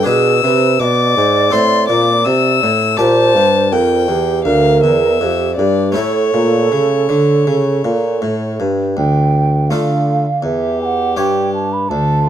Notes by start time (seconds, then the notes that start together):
0.03 B2 D4 G#4 B4
0.07 B2 G#4 E6
0.43 C3 B4
0.79 B2 E5 D6
0.85 D5
1.17 G#2
1.50 A2 C4 A4 C5 C6
1.55 A2
1.88 A#2 D6
2.24 C3 E6
2.62 A2
2.97 A#2 G4 C5 D5 A5
3.35 G2
3.72 F2 A#4 G5
4.08 E2 G4
4.44 D2 A#4 F5
4.83 E2 E5
5.20 F2 A4
5.25 G4
5.56 G2 A4 D5
5.63 G4
5.92 A3 E4 A4 C#5
5.96 A2 A4
6.34 A#2
6.71 C#3
7.09 D3
7.47 C#3
7.84 A#2
8.22 A2
8.60 G2
8.97 D2 G5
9.70 D3 A3 F4 A4 F5
10.43 E2 G4 E5
10.82 F#5 G#5
11.16 G2 G4 C#5 G5
11.54 A5
11.73 B5
11.89 D2 A4 A5
12.26 F4